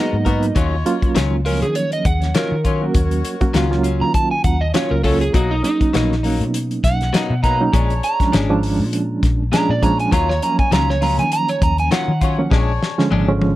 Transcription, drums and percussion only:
0.26 kick, closed hi-hat
0.43 closed hi-hat
0.56 kick, closed hi-hat
0.86 closed hi-hat
1.02 kick, closed hi-hat
1.16 snare, closed hi-hat
1.46 open hi-hat
1.62 closed hi-hat
1.75 closed hi-hat
1.92 closed hi-hat
2.05 kick, closed hi-hat
2.22 snare, closed hi-hat
2.35 snare, closed hi-hat
2.65 kick, closed hi-hat
2.95 kick, closed hi-hat
3.11 closed hi-hat
3.25 closed hi-hat
3.41 kick, closed hi-hat
3.54 snare, closed hi-hat
3.72 snare
3.84 closed hi-hat
4.14 kick, closed hi-hat
4.44 kick, closed hi-hat
4.74 snare, closed hi-hat
5.04 kick, open hi-hat
5.21 closed hi-hat
5.34 kick, closed hi-hat
5.64 closed hi-hat
5.81 kick, closed hi-hat
5.94 snare, closed hi-hat
6.12 snare
6.24 open hi-hat
6.41 closed hi-hat
6.54 closed hi-hat
6.71 closed hi-hat
6.84 kick, snare, closed hi-hat
7.01 snare, closed hi-hat
7.14 snare, closed hi-hat
7.44 kick, closed hi-hat
7.73 kick, closed hi-hat
7.90 closed hi-hat
8.03 closed hi-hat
8.20 kick, snare, closed hi-hat
8.33 snare, closed hi-hat
8.63 open hi-hat
8.93 closed hi-hat
9.23 kick, snare, closed hi-hat
9.53 snare, closed hi-hat
9.83 kick, closed hi-hat
9.99 closed hi-hat
10.12 kick, closed hi-hat
10.30 snare
10.42 closed hi-hat
10.59 kick, closed hi-hat
10.72 snare, closed hi-hat
10.90 snare
11.02 open hi-hat
11.19 closed hi-hat
11.32 closed hi-hat
11.48 closed hi-hat
11.62 kick, closed hi-hat
11.78 closed hi-hat
11.91 snare, closed hi-hat
12.21 kick, closed hi-hat
12.51 kick, snare
12.83 snare
12.99 snare
13.12 high tom
13.42 high tom

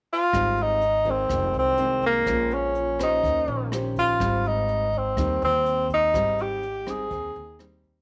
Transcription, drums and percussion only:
0.33 kick, cross-stick, closed hi-hat
0.57 closed hi-hat
0.81 closed hi-hat
1.05 kick, closed hi-hat
1.29 kick, cross-stick, closed hi-hat
1.54 closed hi-hat
1.78 closed hi-hat
2.02 kick, closed hi-hat
2.26 kick, cross-stick, closed hi-hat
2.51 closed hi-hat
2.75 closed hi-hat
2.99 kick, cross-stick, closed hi-hat
3.24 kick, closed hi-hat
3.48 closed hi-hat
3.72 cross-stick, closed hi-hat
3.96 kick, closed hi-hat
4.20 kick, cross-stick, closed hi-hat
4.44 closed hi-hat
4.68 closed hi-hat
4.93 kick, closed hi-hat
5.17 kick, cross-stick, closed hi-hat
5.42 closed hi-hat
5.66 closed hi-hat
5.90 kick, closed hi-hat
6.14 kick, cross-stick, closed hi-hat
6.38 closed hi-hat
6.63 closed hi-hat
6.87 kick, cross-stick, closed hi-hat
7.11 kick, closed hi-hat
7.35 closed hi-hat
7.59 cross-stick, closed hi-hat
7.84 kick, closed hi-hat

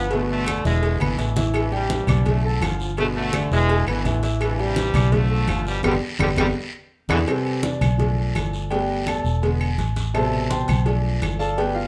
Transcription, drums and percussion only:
0.11 cowbell, high conga, low agogo, long guiro
0.30 high conga
0.46 cowbell, high conga, low agogo, short guiro, claves
0.65 high conga, short guiro
0.83 cowbell, low agogo, long guiro
1.00 low conga, low agogo, claves
1.18 cowbell, low agogo, short guiro
1.36 cowbell, low conga, short guiro
1.54 cowbell, high conga, low agogo, long guiro, claves
1.72 high conga, low agogo
1.90 cowbell, high conga, short guiro
2.07 cowbell, high conga, low conga, low agogo, short guiro, claves
2.25 cowbell, high conga, low conga, low agogo, long guiro
2.44 high conga
2.61 cowbell, high conga, low timbale, low agogo, short guiro, claves
2.80 high conga, short guiro
2.97 cowbell, high conga, low agogo, long guiro
3.15 high conga
3.33 cowbell, high conga, low agogo, short guiro, claves
3.51 high conga, short guiro
3.69 cowbell, high conga, low agogo, long guiro
3.87 high conga, low agogo, claves
4.05 cowbell, high conga, low agogo, short guiro
4.23 cowbell, short guiro
4.40 cowbell, high conga, low agogo, long guiro, claves
4.58 high conga, low agogo
4.76 cowbell, high conga, short guiro
4.94 cowbell, high conga, low conga, low agogo, short guiro, claves
5.12 cowbell, high conga, low conga, low agogo, long guiro
5.30 high conga
5.48 cowbell, high conga, low agogo, short guiro, claves
5.65 high conga, short guiro
5.83 cowbell, high conga, high timbale, long guiro, claves
6.19 cowbell, high conga, high timbale, claves
6.36 cowbell, high conga, high timbale, long guiro, claves
7.09 cowbell, high conga, high timbale, long guiro, claves
7.27 cowbell, high conga, low agogo, long guiro, claves
7.45 high conga, low agogo
7.63 cowbell, high conga, short guiro
7.81 cowbell, high conga, low conga, low agogo, short guiro, claves
7.99 cowbell, high conga, low conga, low agogo, long guiro
8.17 high conga
8.35 cowbell, high conga, low timbale, low agogo, short guiro, claves
8.53 high conga, short guiro
8.70 cowbell, high conga, low agogo, long guiro
8.90 high conga
9.07 cowbell, high conga, low agogo, short guiro, claves
9.25 high conga, short guiro
9.43 cowbell, high conga, low agogo, long guiro
9.60 high conga, low agogo, claves
9.78 cowbell, high conga, low agogo, short guiro
9.96 cowbell, high conga, short guiro
10.15 cowbell, high conga, low agogo, long guiro, claves
10.33 high conga, low agogo
10.50 cowbell, high conga, short guiro
10.68 cowbell, high conga, low conga, low agogo, short guiro, claves
10.86 cowbell, high conga, low agogo, long guiro
11.04 high conga
11.22 cowbell, high conga, low timbale, low agogo, short guiro, claves
11.40 high conga, short guiro
11.58 cowbell, high conga, low agogo, long guiro
11.75 high conga

